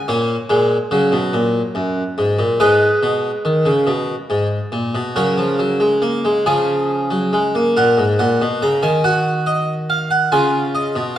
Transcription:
0.08 A#2 A#3 C#5
0.49 A#2 G#3
0.91 C#3 F#3
1.12 B2
1.33 A#2
1.75 F#2
2.18 G#2
2.39 A#2
2.60 G#2 G#3 B4 D#5
3.03 B2
3.45 D#3
3.66 C#3
3.87 B2
4.30 G#2
4.72 A#2
4.95 B2
5.16 C#3 F#3 A#4 C#5
5.38 F3
5.59 F#3
5.80 G#3
6.02 A#3
6.25 G#3
6.46 C#3 F3 G#4 G#5
7.11 F#3
7.33 G#3
7.55 A#3
7.77 A#2 A#4 F#5
7.98 G#2
8.19 A#2 F#5
8.42 B2
8.62 C#3 A#5
8.83 D#3 G#5
9.04 F#4 F#5
9.46 D#5
9.90 F5
10.11 F#5
10.32 C#3 F4 G#5
10.75 D#5
10.96 B2

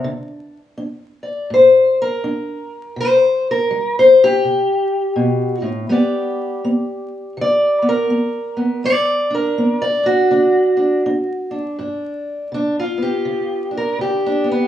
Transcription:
Already playing: D4
0.04 D3
0.78 D4
1.23 D5
1.50 A2 C5
2.02 A#4
2.24 D4
2.96 C3
3.00 C5
3.51 A#4
3.71 G3
3.99 C5
4.24 G4
4.45 C3
5.16 B2
5.62 A2
5.89 G3 B3 G4 D5
6.64 B3
7.37 D3
7.41 D5
7.82 B3
7.89 A#4
8.10 B3
8.57 B3
8.84 G3 D5
9.30 D4
9.35 A#4
9.58 B3
9.82 D5
10.03 D4 F#4
10.31 D3 D4
10.77 D4
11.06 D4
11.51 D4
11.79 G2 D4
12.52 D3 D4
12.79 F4
12.98 B3
13.02 G4
13.25 D3
13.71 D4
13.77 A#4
13.98 D3 G4
14.26 D4
14.44 B3
14.51 B3

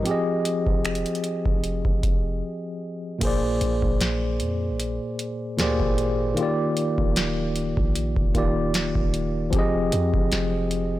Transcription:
0.03 F3 C4 G4, closed hi-hat
0.09 G#4 D#5
0.45 closed hi-hat
0.67 F1, kick
0.85 finger snap, closed hi-hat
0.95 closed hi-hat
1.06 closed hi-hat
1.15 closed hi-hat
1.24 closed hi-hat
1.46 F1, kick
1.64 closed hi-hat
1.85 F1, kick
2.03 F1, kick, closed hi-hat
3.19 A#1 A#2 A#3, kick, closed hi-hat, crash
3.23 G#4 C5 D5
3.61 A#1, closed hi-hat
3.82 A#1, kick
4.01 A#1, snare, closed hi-hat
4.40 F2, closed hi-hat
4.71 A#1
4.80 closed hi-hat
5.19 closed hi-hat
5.58 D2 A#2 A#3 G4 G#4 C5, snare, closed hi-hat
5.62 D5
5.80 G#1, kick
5.98 closed hi-hat
6.34 D#3 A#3, closed hi-hat
6.38 F4 G4
6.43 D5
6.77 closed hi-hat
6.98 D#1, kick
7.16 snare, closed hi-hat
7.56 closed hi-hat
7.77 A#1, kick
7.95 closed hi-hat
8.16 D#1, kick
8.34 D#1 D#3 A#3 F4 G4, kick, closed hi-hat
8.38 D5
8.74 snare, closed hi-hat
8.95 D#1, kick
9.14 closed hi-hat
9.50 F1 F3 C4, kick, closed hi-hat
9.55 G4 G#4
9.59 D#5
9.92 F2, closed hi-hat
10.14 F1, kick
10.32 F1, snare, closed hi-hat
10.71 closed hi-hat

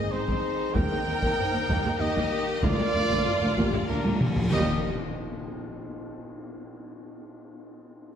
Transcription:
Already playing: D#3 C4 D#4 G#4 D#5
0.11 G#1 G#2 C4 D#4 G#4 C5
0.27 G#2 C4, taiko
0.74 D#2 D#3 A#3 D#4 A#4 G5, taiko
0.91 D#2 G#3
1.07 D#2 A#3
1.22 D#2 A#3, taiko
1.38 A#3 C5, taiko low-mid
1.53 D#2 A#3
1.69 D#2 A#3 A#4, taiko
1.85 D#2 G#3, taiko low-mid
1.99 D#2 A#3 G4 D#5
2.16 D#2 A#3, taiko
2.62 D2 F3 A#3 F4 D5, taiko, cymbal swell
2.70 A#2
2.78 D2 A#2 G#3
2.93 D2 A#2 A#3
3.01 A#2
3.07 D2 A#2 A#3, taiko
3.15 A#2
3.23 A#2 F4, taiko low-mid
3.31 A#2
3.39 D2 A#2 A#3
3.46 A#2
3.54 D2 A#2 A#3 G4, taiko
3.61 A#2
3.68 A#2
3.73 D2 A#2 G#3, taiko low-mid
3.84 A#2
3.88 D2 A#2 A#3 D4 F4 A#4
3.99 A#2
4.05 D2 A#2 A#3, taiko high
4.14 A#2
4.21 A#2, taiko mid
4.29 A#2
4.36 A#2, taiko low
4.44 A#2
4.52 D#2 A#2 D#3 G3 A#3 G4 A#4 D#5, tam-tam, impact

